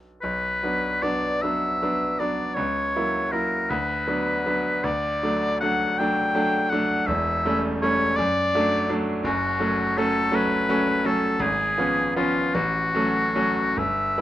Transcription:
Already playing: B1 F#3 B3 D4
0.21 B1 B4
0.63 F#3 B3 D4
1.02 F#3 B3 D4 D5
1.42 F#3 B3 D4 E5
1.82 F#3 B3 D4
2.19 F#3 B3 D4 D5
2.54 C#2 C#5
2.96 F#3 A#3 E4
3.31 F#3 A#3 E4 A#4
3.69 D2 B4
4.07 F#3 B3 D4
4.46 F#3 B3 D4
4.84 D2 D5
5.23 F#3 A3 D4
5.60 F#3 A3 D4 F#5
5.98 F#3 A3 D4 G5
6.35 F#3 A3 D4
6.69 F#3 A3 D4 F#5
7.07 E1 E2 E5
7.45 G3 A3 C#4
7.82 G3 A3 C#4 C#5
8.16 F#2 D5
8.55 F#3 A3 D4
8.89 F#3 A3 D4
9.23 F#1 F#2 F#4
9.60 F#3 A3 C#4
9.97 F#3 A3 C#4 A4
10.32 F#3 A3 C#4 B4
10.69 F#3 A3 C#4
11.04 F#3 A3 C#4 A4
11.40 G#1 G#4
11.78 F3 B3 C#4
12.16 F3 B3 C#4 F4
12.55 A1 F#4
12.94 F#3 A3 C#4
13.35 F#3 A3 C#4
13.77 G1 E5
14.18 G3 B3 E4

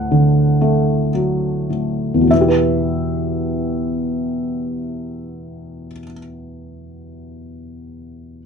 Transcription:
Already playing: D2 A2 A4 F#5
0.11 D3
0.61 A3
1.14 F#3
1.70 A2
2.14 E2
2.21 B2
2.27 E3 E5
2.35 B3
2.41 G4
2.48 B4

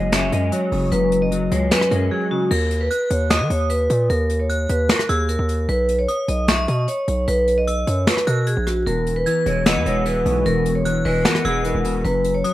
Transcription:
Already playing: F#1 F#2 F#3 G#3
0.12 C#4 E5, finger snap, snare, closed hi-hat
0.32 F#2 G#3 D#5, closed hi-hat
0.52 F#3 C#5, closed hi-hat
0.72 F#1 C#3, open hi-hat
0.92 F#1 F#2 B4, closed hi-hat
1.12 closed hi-hat
1.22 D#5
1.32 F#3, closed hi-hat
1.52 C#2 G#3 C#5, closed hi-hat
1.71 C#4 B4, finger snap, snare, closed hi-hat
1.81 cross-stick
1.91 F#2 G#3 A#4, closed hi-hat
2.11 F#3 G#4
2.31 C#3 F#4
2.51 D#2 A#4, crash
2.71 closed hi-hat
2.81 B4
2.91 F#6, closed hi-hat
3.10 D#2 C#5, closed hi-hat
3.30 D#5 D#6, finger snap, snare, closed hi-hat
3.40 D#3
3.50 D#2 C#5, closed hi-hat
3.70 B4, closed hi-hat
3.90 A#2, closed hi-hat
4.10 D#2 A#4, closed hi-hat
4.30 closed hi-hat
4.39 C#5
4.50 F#6, closed hi-hat
4.69 D#2 B4, closed hi-hat
4.89 A#4, finger snap, snare, closed hi-hat
4.99 cross-stick
5.09 D#2 G#4 E6, closed hi-hat
5.29 A#4, closed hi-hat
5.39 D#2
5.49 closed hi-hat
5.69 B1 B4, closed hi-hat
5.89 closed hi-hat
5.99 C#5
6.08 D#6, closed hi-hat
6.28 B1 D#5, closed hi-hat
6.48 E5 C#6, finger snap, snare, closed hi-hat
6.68 B2 D#5, closed hi-hat
6.88 C#5, closed hi-hat
7.08 B1, closed hi-hat
7.28 B1 B4, closed hi-hat
7.48 closed hi-hat
7.58 D#5
7.67 E6, closed hi-hat
7.87 F#2 C#5, closed hi-hat
8.07 B4, finger snap, snare, closed hi-hat
8.17 cross-stick
8.27 B2 A#4 F#6, closed hi-hat
8.47 G#4, closed hi-hat
8.57 A#1
8.67 F#4, cross-stick, closed hi-hat
8.86 E1 E2 A#4, closed hi-hat
9.07 closed hi-hat
9.16 B4
9.26 E3 G#6, closed hi-hat
9.46 E1 G#3 C#5, closed hi-hat
9.66 B3 D#5 E6, finger snap, snare, closed hi-hat
9.76 E2
9.86 E1 G#3 C#5, closed hi-hat
10.06 E3 B4, closed hi-hat
10.26 B1 B2, closed hi-hat
10.46 E1 E2 A#4, closed hi-hat
10.66 closed hi-hat
10.75 C#5
10.85 E3 F#6, closed hi-hat
11.05 E1 G#3 B4, open hi-hat
11.25 B3 A#4, finger snap, snare, closed hi-hat
11.35 cross-stick
11.45 E1 G#3 G#4 E6, closed hi-hat
11.65 E3 A#4, closed hi-hat
11.75 E1
11.85 B2, closed hi-hat
12.05 F#1 F#2 B4, closed hi-hat
12.24 closed hi-hat
12.34 C#5
12.44 F#3 D#6, closed hi-hat

